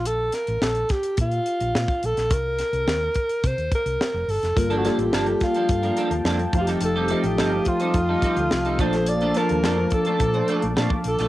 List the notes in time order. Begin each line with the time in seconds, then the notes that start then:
Already playing: A#1
0.05 A4, closed hi-hat
0.32 A#4, snare, closed hi-hat
0.47 A1, closed hi-hat
0.62 A#1 A4, snare
0.75 closed hi-hat
0.89 G4, kick, snare, closed hi-hat
1.03 closed hi-hat
1.17 A#2 F4, kick, closed hi-hat
1.31 closed hi-hat
1.46 closed hi-hat
1.60 A#1, closed hi-hat
1.75 A#2, snare
1.88 kick, closed hi-hat
2.03 A#1 A4, closed hi-hat
2.17 A#1, snare, closed hi-hat
2.31 C2 A#4, kick, closed hi-hat
2.59 snare, closed hi-hat
2.73 C2, closed hi-hat
2.87 D#2, snare
3.14 kick, closed hi-hat
3.29 closed hi-hat
3.44 C3 C5, kick, closed hi-hat
3.58 D#2, closed hi-hat
3.72 A#4, kick, closed hi-hat
3.86 C2, closed hi-hat
4.01 snare
4.14 F1
4.28 G1 A4, open hi-hat
4.43 F1, snare, closed hi-hat
4.56 G1 G3 A#3 F4 A4 A#4 F5 G5 A5, muted clean electric guitar stroke, kick, closed hi-hat
4.70 F3 A#3 D4 A4, closed hi-hat
4.78 F#4
4.84 F3 G3 A#3 D4 F4 G4 A4, snare, closed hi-hat
4.98 A1, muted clean electric guitar stroke, closed hi-hat
5.12 G1 F3 A#3 D4 A4, snare
5.26 muted clean electric guitar stroke, closed hi-hat
5.40 F4, muted clean electric guitar stroke, kick, snare, closed hi-hat
5.54 F3 A#3 D4 A4, closed hi-hat
5.69 G2, muted clean electric guitar stroke, kick, closed hi-hat
5.83 F3 A#3 D4 A#4, closed hi-hat
5.97 F3 A#3 D4 A4, closed hi-hat
6.11 D#2, muted clean electric guitar stroke, closed hi-hat
6.24 F2 F3 A#3 D4 A4, snare
6.39 muted clean electric guitar stroke, closed hi-hat
6.53 F1 F3 A3 D#4 F4 D#6, muted clean electric guitar stroke, kick, closed hi-hat
6.57 F4
6.61 G4
6.67 G3 C4 D#4 A4, snare, closed hi-hat
6.81 F1 A4, muted clean electric guitar stroke, closed hi-hat
6.96 G3 C4 D#4 A4
7.08 F3 G3 A3 C4 D#4 A4, closed hi-hat
7.12 G4
7.24 A1, muted clean electric guitar stroke, closed hi-hat
7.37 G1 G3 C4 D#4 A4, snare
7.53 muted clean electric guitar stroke
7.65 F4, muted clean electric guitar stroke, kick, closed hi-hat
7.80 G3 C4 D#4 C5, closed hi-hat
7.94 F2, muted clean electric guitar stroke, kick, closed hi-hat
8.09 G3 C4 D#4 A4
8.22 G3 C4 D#4 A4, kick, closed hi-hat
8.37 D2, muted clean electric guitar stroke, closed hi-hat
8.51 C2, muted clean electric guitar stroke, snare
8.65 G3 C4 D#4 A4, closed hi-hat
8.78 A#1 F3 A3 A#3 D4 F4 A4 C5 A5 D6, kick, closed hi-hat
8.93 muted clean electric guitar stroke, snare, closed hi-hat
9.06 D5, muted clean electric guitar stroke, closed hi-hat
9.21 A3 D4 F4 A4, closed hi-hat
9.34 F3 A3 A#3 D4 F4 A4 A#4 A5, snare, closed hi-hat
9.49 D#2, muted clean electric guitar stroke, closed hi-hat
9.64 F2 A3 D4 F4 A4, snare
9.78 muted clean electric guitar stroke
9.90 A4, muted clean electric guitar stroke, kick, closed hi-hat
10.05 A3 D4 F4 A4, closed hi-hat
10.20 A#2, muted clean electric guitar stroke, kick, closed hi-hat
10.34 A3 D4 F4 C5, closed hi-hat
10.48 A3 D4 F4 A4, closed hi-hat
10.62 A#1, muted clean electric guitar stroke, closed hi-hat
10.76 A#2 A3 D4 F4 A4, snare
10.90 muted clean electric guitar stroke, kick
11.04 A#1 A4, muted clean electric guitar stroke, closed hi-hat
11.19 A#1 A3 D4 F4 A4, snare, closed hi-hat